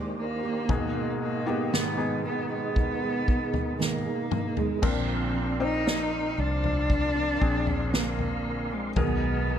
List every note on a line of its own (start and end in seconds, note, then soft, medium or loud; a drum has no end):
0.00 0.65 D#2 medium
0.00 0.65 A#2 medium
0.00 4.79 D#3 soft
0.00 0.14 G#3 medium
0.00 0.44 A#3 soft
0.00 0.65 A#3 soft
0.00 0.43 D4 soft
0.00 0.42 G4 soft
0.00 0.65 G4 soft
0.00 0.67 C5 medium
0.00 0.65 D5 soft
0.19 1.18 A#3 medium
0.43 0.70 A#3 soft
0.43 0.70 D4 soft
0.43 0.69 G4 soft
0.69 1.47 G#2 medium
0.69 4.79 G#2 medium
0.69 1.43 B2 medium
0.69 4.79 B2 soft
0.69 4.79 D#3 medium
0.69 1.47 D#3 medium
0.69 4.79 G#3 soft
0.69 1.47 G#3 medium
0.69 1.43 D#4 medium
0.69 4.79 D#4 soft
0.69 1.46 D#4 medium
0.69 1.43 G#4 medium
0.69 1.45 G#4 medium
0.69 2.74 D#5 medium
0.69 kick medium
0.69 floor tom medium
1.22 1.75 A#3 medium
1.46 1.72 G#3 soft
1.46 1.96 B3 medium
1.46 1.72 B3 soft
1.46 1.96 D#4 medium
1.46 1.72 D#4 soft
1.46 1.96 G4 medium
1.46 1.73 G#4 soft
1.73 2.24 G#2 medium
1.73 2.25 D#3 medium
1.73 2.23 G#3 medium
1.73 2.25 B3 medium
1.73 2.24 B3 medium
1.73 2.24 D#4 medium
1.73 2.25 G#4 medium
1.73 snare loud
1.98 3.95 B3 medium
1.98 3.95 D#4 medium
1.98 3.95 G#4 medium
2.24 2.50 G#3 soft
2.24 2.50 B3 medium
2.24 2.49 B3 medium
2.24 2.49 D#4 medium
2.24 2.49 G#4 medium
2.50 3.02 G#3 soft
2.50 3.02 B3 soft
2.50 3.76 B3 medium
2.50 3.01 D#4 soft
2.50 3.00 G#4 soft
2.76 4.81 A#4 medium
2.76 kick medium
2.76 floor tom medium
3.01 3.26 G#3 soft
3.01 3.27 B3 soft
3.01 3.28 D#4 soft
3.01 3.28 G#4 soft
3.27 3.78 G#3 soft
3.27 3.79 B3 medium
3.27 3.79 D#4 medium
3.27 3.79 G#4 medium
3.27 kick medium
3.53 floor tom medium
3.79 4.05 G#2 medium
3.79 4.05 D#3 medium
3.79 4.05 G#3 medium
3.79 4.60 A#3 medium
3.79 4.05 B3 medium
3.79 4.05 D#4 medium
3.79 4.04 G#4 medium
3.79 snare soft
4.05 4.57 G#3 soft
4.05 4.56 D#4 soft
4.05 4.55 G#4 soft
4.31 mid tom medium
4.57 4.83 G#3 soft
4.57 4.86 G#3 medium
4.57 4.83 B3 soft
4.57 4.83 D#4 soft
4.57 4.83 G#4 medium
4.57 floor tom medium
4.82 6.34 A#1 medium
4.82 6.34 A#2 medium
4.82 5.34 A#2 medium
4.82 5.35 D3 medium
4.82 6.34 F3 medium
4.82 5.33 F3 medium
4.82 5.56 C4 medium
4.82 5.33 C4 medium
4.82 5.61 C4 medium
4.82 5.56 D4 medium
4.82 5.34 D4 medium
4.82 5.57 A#4 medium
4.82 8.93 A#4 medium
4.82 5.35 A#4 medium
4.82 8.93 D5 soft
4.82 8.93 F5 soft
4.82 8.93 C6 medium
4.82 kick medium
4.82 floor tom medium
4.82 crash medium
5.34 5.60 F3 medium
5.34 5.60 C4 medium
5.34 5.59 D4 medium
5.34 5.58 A#4 medium
5.60 5.85 F3 soft
5.60 7.32 C4 medium
5.60 5.86 C4 soft
5.60 5.86 D4 soft
5.60 6.41 D#4 medium
5.60 5.86 A#4 soft
5.60 7.33 C5 medium
5.60 7.32 D5 medium
5.86 6.38 A#2 medium
5.86 6.36 F3 medium
5.86 6.37 C4 medium
5.86 6.38 A#4 medium
5.86 snare loud
6.37 7.38 C2 medium
6.37 6.64 F3 medium
6.37 6.63 C4 medium
6.37 6.63 D4 medium
6.37 7.97 D4 loud
6.37 6.62 A#4 medium
6.63 7.16 F3 soft
6.63 7.15 C4 soft
6.63 7.15 D4 soft
6.63 7.14 A#4 soft
6.63 floor tom medium
6.89 kick medium
6.89 floor tom medium
7.15 7.40 F3 soft
7.15 7.41 C4 soft
7.15 7.41 D4 soft
7.15 7.41 A#4 soft
7.41 8.93 A#1 medium
7.41 7.67 F3 soft
7.41 8.89 C4 medium
7.41 7.68 C4 medium
7.41 8.89 D4 medium
7.41 7.67 D4 medium
7.41 8.89 G#4 medium
7.41 7.66 A#4 soft
7.41 kick medium
7.67 7.93 F3 soft
7.67 7.93 C4 soft
7.67 7.93 D4 soft
7.67 7.93 A#4 soft
7.67 floor tom medium
7.93 8.71 A#2 medium
7.93 8.71 D3 medium
7.93 8.71 F3 medium
7.93 8.75 A#3 medium
7.93 8.71 C4 medium
7.93 8.70 D4 medium
7.93 8.69 A#4 medium
7.93 snare medium
8.19 floor tom medium
8.70 8.97 F3 soft
8.70 9.00 G#3 medium
8.70 8.97 C4 soft
8.70 8.97 D4 soft
8.70 8.97 A#4 soft
8.96 9.59 B1 medium
8.96 9.48 B2 medium
8.96 9.59 B2 medium
8.96 9.48 D#3 medium
8.96 9.47 G#3 medium
8.96 9.59 B3 medium
8.96 9.48 D#4 medium
8.96 9.59 G#4 medium
8.96 9.49 G#4 medium
8.96 9.59 A#4 medium
8.96 9.59 D#5 soft
8.96 9.59 G#5 medium
8.96 9.59 A#5 medium
8.96 kick medium
8.96 floor tom medium
9.48 9.59 G#3 soft
9.48 9.59 A#3 medium
9.48 9.59 D#4 medium
9.48 9.59 G#4 medium